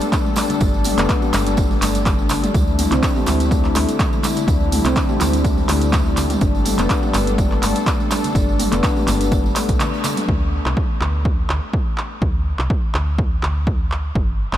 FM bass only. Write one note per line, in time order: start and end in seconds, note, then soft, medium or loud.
0.61 0.93 G1 loud
0.98 1.07 F1 loud
1.33 1.78 G1 loud
1.82 2.50 G1 medium
2.55 2.87 D2 loud
2.91 3.00 C2 loud
3.27 3.71 D2 loud
3.75 3.85 D2 loud
4.48 4.80 D2 loud
4.85 4.94 C2 loud
5.20 5.65 D2 loud
5.69 6.37 D2 loud
6.41 6.74 G1 loud
6.78 6.87 F1 loud
7.14 7.58 G1 loud
7.63 7.72 G1 loud
8.35 8.67 G1 loud
8.72 8.81 F1 loud
9.08 9.52 G1 loud
9.69 9.78 B1 medium
10.29 10.61 D2 loud
10.66 10.74 C2 loud
11.01 11.45 D2 loud
11.50 11.60 D2 loud
12.22 12.54 D2 loud
12.59 12.68 C2 loud
12.95 13.39 D2 loud
13.43 14.11 D2 loud
14.15 14.48 G1 medium
14.53 14.57 F1 loud